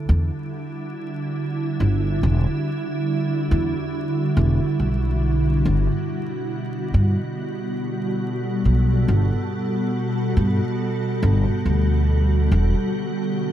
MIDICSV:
0, 0, Header, 1, 3, 480
1, 0, Start_track
1, 0, Key_signature, 1, "minor"
1, 0, Tempo, 857143
1, 1249, Time_signature, 4, 2, 24, 8
1, 7572, End_track
2, 0, Start_track
2, 0, Title_t, "Ambient pad"
2, 0, Program_c, 0, 92
2, 0, Note_on_c, 0, 50, 84
2, 0, Note_on_c, 0, 55, 79
2, 0, Note_on_c, 0, 64, 88
2, 0, Note_on_c, 0, 66, 88
2, 0, Note_on_c, 0, 69, 80
2, 234, Note_off_c, 0, 69, 0
2, 3170, Note_off_c, 0, 50, 0
2, 3170, Note_on_c, 0, 47, 93
2, 4049, Note_on_c, 0, 69, 78
2, 4684, Note_off_c, 0, 64, 0
2, 7009, Note_off_c, 0, 47, 0
2, 7012, Note_on_c, 0, 50, 84
2, 7134, Note_on_c, 0, 64, 80
2, 7572, Note_off_c, 0, 50, 0
2, 7572, Note_off_c, 0, 55, 0
2, 7572, Note_off_c, 0, 64, 0
2, 7572, Note_off_c, 0, 66, 0
2, 7572, Note_off_c, 0, 69, 0
2, 7572, End_track
3, 0, Start_track
3, 0, Title_t, "Upright bass"
3, 0, Program_c, 1, 32
3, 49, Note_on_c, 1, 40, 89
3, 163, Note_off_c, 1, 40, 0
3, 1008, Note_on_c, 1, 31, 86
3, 1222, Note_off_c, 1, 31, 0
3, 1249, Note_on_c, 1, 28, 92
3, 1363, Note_off_c, 1, 28, 0
3, 1967, Note_on_c, 1, 40, 92
3, 2082, Note_off_c, 1, 40, 0
3, 2445, Note_on_c, 1, 28, 101
3, 2561, Note_off_c, 1, 28, 0
3, 2686, Note_on_c, 1, 35, 78
3, 3146, Note_off_c, 1, 35, 0
3, 3166, Note_on_c, 1, 31, 92
3, 3281, Note_off_c, 1, 31, 0
3, 3887, Note_on_c, 1, 43, 90
3, 4002, Note_off_c, 1, 43, 0
3, 4846, Note_on_c, 1, 35, 86
3, 5061, Note_off_c, 1, 35, 0
3, 5086, Note_on_c, 1, 31, 97
3, 5202, Note_off_c, 1, 31, 0
3, 5806, Note_on_c, 1, 43, 91
3, 5921, Note_off_c, 1, 43, 0
3, 6286, Note_on_c, 1, 31, 103
3, 6401, Note_off_c, 1, 31, 0
3, 6527, Note_on_c, 1, 38, 83
3, 6986, Note_off_c, 1, 38, 0
3, 7009, Note_on_c, 1, 28, 96
3, 7123, Note_off_c, 1, 28, 0
3, 7572, End_track
0, 0, End_of_file